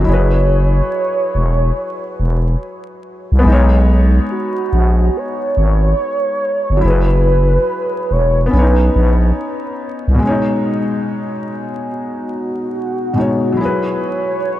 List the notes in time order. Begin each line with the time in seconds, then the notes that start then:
Already playing: D#5
0.01 F#3
0.05 F#1 E4 C#5
0.09 G#4
0.13 B4
1.35 E1
2.20 E1
3.32 C2
3.39 B3
3.43 B1 G#3
3.47 D#4
3.52 C#5
4.31 F#4
4.73 A#1
5.17 C#5
5.57 G#1
6.70 G1
6.77 F#3
6.81 F#1 E4
6.85 G#4 B4
6.90 B4
8.11 E1 C#5
8.46 B3
8.51 B1 C#4 D4 B4
8.59 D#4 C#5
8.96 A#1
10.08 C2
10.15 B2
10.19 G#3
10.23 C#4
10.27 D#4 C#5
11.91 F#4
13.13 B2 G#3
13.17 D#4 C#5
13.52 F#3
13.57 E4
13.61 G#4 C#5
13.65 B4